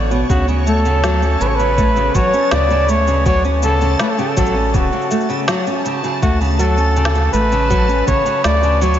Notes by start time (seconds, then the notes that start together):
Already playing: A1 C#5
0.11 B2, cabasa
0.29 D2 C#3 F#4 A5, kick, cabasa
0.48 C#3, cabasa
0.66 A3 A4, cabasa
0.85 C#3, cabasa
1.03 F#3, snare, cabasa
1.22 C#4, cabasa
1.40 A1 C#3 B4, cabasa
1.48 C#5
1.55 B4
1.59 C#3, cabasa
1.78 A3, kick, cabasa
1.96 C#3, cabasa
2.15 A1 F#3 C#5, kick, cabasa
2.33 C#4, cabasa
2.51 D2 C#3 D5, snare, cabasa
2.70 C#3, cabasa
2.89 A3 C#5, cabasa
3.07 C#3, cabasa
3.26 F#3 C#5, kick, cabasa
3.44 C#4, cabasa
3.63 C#3 A4, cabasa
3.81 C#3, cabasa
3.99 A3 B4, snare, cabasa
4.10 A4
4.18 C#3 G4, cabasa
4.29 A4
4.37 A1 F#3 A4, kick, cabasa
4.46 cabasa
4.55 C#4
4.74 D1 C#3 F#4, kick, cabasa
4.92 C#3, cabasa
5.02 cabasa
5.11 A3, cabasa
5.20 cabasa
5.29 C#3, cabasa
5.48 F#3, snare, cabasa
5.67 C#4, cabasa
5.85 C#3, cabasa
6.04 C#3, cabasa
6.22 D2 A3 F#4, kick, cabasa
6.41 C#3, cabasa
6.44 cabasa
6.47 cabasa
6.50 cabasa
6.53 cabasa
6.56 F#3 A4, cabasa
6.59 cabasa
6.78 C#4, cabasa
6.96 C#3, cabasa
7.05 snare
7.15 C#3, cabasa
7.33 A1 A3 B4, cabasa
7.52 C#3, cabasa
7.70 F#3, kick, cabasa
7.88 C#4, cabasa
8.07 A1 C#3 C#5, kick, cabasa
8.25 C#3, cabasa
8.44 D2 A3 D5, snare, cabasa
8.63 C#3, cabasa
8.81 F#3 C#5, cabasa
8.94 cabasa